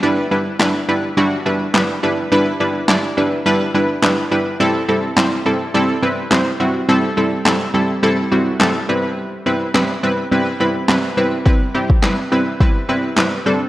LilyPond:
<<
  \new Staff \with { instrumentName = "Synth stab" } { \time 4/4 \key e \minor \tempo 4 = 105 <g d' e' b'>8 <g d' e' b'>8 <g d' e' b'>8 <g d' e' b'>8 <g d' e' fis'>8 <g d' e' b'>8 <g d' e' b'>8 <g d' e' b'>8 | <g d' e' b'>8 <g d' e' b'>8 <g d' e' d''>8 <g d' e' b'>8 <g d' e' b'>8 <g d' e' b'>8 <g d' e' b'>8 <g d' e' b'>8 | <g c' e' a'>8 <g c' e' a'>8 <g c' e' c''>8 <g c' e' a'>8 <g c' e' a'>8 <g c' e' b'>8 <g c' e' c''>8 <g c' e' fis'>8 | <g c' e' a'>8 <g c' e' a'>8 <g c' e' a'>8 <g c' e' a'>8 <g c' e' a'>8 <g c' e' fis'>8 <g c' e' a'>8 <g c' e' b'>8~ |
<g c' e' b'>8 <g c' e' b'>8 <g c' e' b'>8 <g c' e' b'>8 <g c' e' b'>8 <g c' e' b'>8 <g c' e' b'>8 <g c' e' b'>8 | <g c' e' b'>8 <g c' e' g'>8 <g c' e' b'>8 <g c' e' b'>8 <g c' e' b'>8 <g c' e' b'>8 <g c' e' b'>8 <g c' d' a'>8 | }
  \new DrumStaff \with { instrumentName = "Drums" } \drummode { \time 4/4 r4 <hc sn>4 r4 <hc sn>4 | r4 <hc sn>4 r4 <hc sn>4 | r4 <hc sn>4 r4 <hc sn>4 | r4 <hc sn>4 r4 <hc sn>4 |
r4 <hc sn>4 r4 <hc sn>4 | bd8. bd16 <hc sn>4 bd4 <hc sn>4 | }
>>